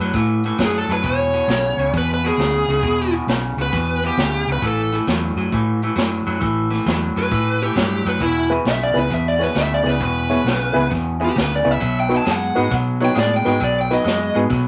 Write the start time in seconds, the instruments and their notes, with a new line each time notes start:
0.00 fingered electric bass F#2, clean electric guitar A2 F#3
0.13 fingered electric bass A2, clean electric guitar A2 E3, kick, snare, closed hi-hat
0.44 clean electric guitar A2 E3, closed hi-hat
0.58 fingered electric bass F#2, clean electric guitar A2 F#3, kick, snare, closed hi-hat
0.64 lead electric guitar G#4
0.78 lead electric guitar A4
0.88 fingered electric bass F#2, clean electric guitar A2 F#3, closed hi-hat
0.93 lead electric guitar B4
1.04 fingered electric bass E1, clean electric guitar E2 B2, lead electric guitar C#5, kick, closed hi-hat
1.34 clean electric guitar E2 B2, closed hi-hat
1.47 fingered electric bass B1, clean electric guitar E2 C#3, snare, closed hi-hat
1.77 fingered electric bass C#2, clean electric guitar E2 C#3, closed hi-hat
1.93 clean electric guitar E2 B2, fingered electric bass E2, kick, snare, closed hi-hat
1.98 lead electric guitar B4
2.14 lead electric guitar B4
2.24 clean electric guitar E2 B2, lead electric guitar G#4, snare, closed hi-hat
2.38 fingered electric bass D2, clean electric guitar E2 C#3, snare, closed hi-hat
2.68 fingered electric bass C#2, clean electric guitar E2 C#3, closed hi-hat
2.82 fingered electric bass E1, clean electric guitar E2 B2, kick, closed hi-hat
3.13 clean electric guitar E2 B2, closed hi-hat
3.27 fingered electric bass B1, clean electric guitar E2 C#3, snare, closed hi-hat
3.57 fingered electric bass C#2, clean electric guitar E2 C#3, closed hi-hat
3.62 lead electric guitar B4
3.72 clean electric guitar E2 B2, fingered electric bass E2, kick, snare, closed hi-hat
4.04 clean electric guitar E2 B2, lead electric guitar G4, closed hi-hat
4.17 fingered electric bass D2, clean electric guitar E2 C#3, kick, snare, closed hi-hat
4.47 fingered electric bass C#2, clean electric guitar E2 C#3, closed hi-hat
4.52 lead electric guitar B4
4.62 fingered electric bass A1, clean electric guitar A2 E3, kick, closed hi-hat
4.67 lead electric guitar A4
4.92 clean electric guitar A2 E3, closed hi-hat
5.07 fingered electric bass E2, clean electric guitar A2 F#3, snare, closed hi-hat
5.35 fingered electric bass F#2, clean electric guitar A2 F#3, closed hi-hat
5.52 fingered electric bass A2, clean electric guitar A2 E3, kick, closed hi-hat
5.82 clean electric guitar A2 E3, closed hi-hat
5.96 fingered electric bass F#2, clean electric guitar A2 F#3, snare, closed hi-hat
6.27 fingered electric bass F#2, clean electric guitar A2 F#3, closed hi-hat
6.40 fingered electric bass A1, clean electric guitar A2 E3, kick, closed hi-hat
6.70 clean electric guitar A2 E3, snare, closed hi-hat
6.86 fingered electric bass E2, clean electric guitar A2 F#3, snare, closed hi-hat
7.16 fingered electric bass F#2, clean electric guitar A2 F#3, lead electric guitar B4, closed hi-hat
7.31 clean electric guitar A2 E3, fingered electric bass A2, kick, closed hi-hat
7.61 clean electric guitar A2 E3, lead electric guitar G4, closed hi-hat
7.76 fingered electric bass G2, clean electric guitar A2 F#3, kick, snare, closed hi-hat
8.05 fingered electric bass F#2, clean electric guitar A2 F#3, lead electric guitar B4, closed hi-hat
8.20 fingered electric bass E1, clean electric guitar E2 B2, lead electric guitar E4, kick, closed hi-hat
8.50 clean electric guitar E2 B2, upright piano B3 E4 G#4 B4, closed hi-hat
8.65 fingered electric bass B1, clean electric guitar E2 C#3, lead electric guitar E5, snare, closed hi-hat
8.83 lead electric guitar D5
8.93 fingered electric bass C#2, clean electric guitar E2 C#3, upright piano B3 E4 G#4 B4, closed hi-hat
8.99 lead electric guitar B4
9.10 fingered electric bass E2, clean electric guitar E2 B2, lead electric guitar E5, kick, snare, closed hi-hat
9.28 lead electric guitar D5
9.39 clean electric guitar E2 B2, upright piano B3 E4 G#4 C#5, snare, closed hi-hat
9.43 lead electric guitar B4
9.55 fingered electric bass D2, clean electric guitar E2 C#3, lead electric guitar E5, snare, closed hi-hat
9.74 lead electric guitar D5
9.83 fingered electric bass C#2, clean electric guitar E2 C#3, upright piano B3 E4 G#4 D5, snare, closed hi-hat
9.89 lead electric guitar B4
10.00 fingered electric bass E1, clean electric guitar E2 B2, lead electric guitar B4, kick, closed hi-hat
10.30 clean electric guitar E2 B2, upright piano B3 E4 G#4 C#5, closed hi-hat
10.44 fingered electric bass B1, clean electric guitar E2 C#3, snare, closed hi-hat
10.73 fingered electric bass C#2, clean electric guitar E2 C#3, upright piano B3 E4 G#4 B4, closed hi-hat
10.90 clean electric guitar E2 B2, fingered electric bass E2, kick, snare, closed hi-hat
11.20 clean electric guitar E2 B2, upright piano B3 E4 G#4 B4, closed hi-hat
11.24 lead electric guitar G4
11.35 fingered electric bass D2, clean electric guitar E2 C#3, kick, snare, closed hi-hat
11.41 lead electric guitar B4
11.56 lead electric guitar D5
11.64 fingered electric bass C#2, clean electric guitar E2 C#3, upright piano B3 E4 G#4 D5, closed hi-hat
11.71 lead electric guitar E5
11.80 fingered electric bass B1, clean electric guitar B2 F#3, kick, closed hi-hat
12.00 lead electric guitar G5
12.09 clean electric guitar B2 F#3, upright piano B3 D#4 F#4 B4, closed hi-hat
12.17 lead electric guitar A5
12.25 fingered electric bass F#2, clean electric guitar B2 G#3, snare, closed hi-hat
12.31 lead electric guitar F#5
12.55 fingered electric bass G#2, clean electric guitar B2 G#3, upright piano B3 D#4 F#4 B4, closed hi-hat
12.71 clean electric guitar B2 F#3, fingered electric bass B2, kick, snare, closed hi-hat
13.00 clean electric guitar B2 F#3, upright piano B3 D#4 F#4 C#5, snare, closed hi-hat
13.05 lead electric guitar G5
13.15 fingered electric bass A2, clean electric guitar B2 G#3, lead electric guitar D5, snare, closed hi-hat
13.36 lead electric guitar G5
13.45 fingered electric bass G#2, clean electric guitar B2 G#3, upright piano B3 D#4 F#4 B4, lead electric guitar G5, snare, closed hi-hat
13.60 fingered electric bass B1, clean electric guitar B2 F#3, kick, closed hi-hat
13.64 lead electric guitar D5
13.81 lead electric guitar G5
13.90 clean electric guitar B2 F#3, upright piano B3 D#4 F#4 B4, lead electric guitar D#5, snare, closed hi-hat
14.04 fingered electric bass F#2, clean electric guitar B2 G#3, snare, closed hi-hat
14.34 fingered electric bass G#2, clean electric guitar B2 G#3, upright piano B3 D#4 F#4 G#4, closed hi-hat
14.50 clean electric guitar B2 F#3, fingered electric bass B2, kick, snare, closed hi-hat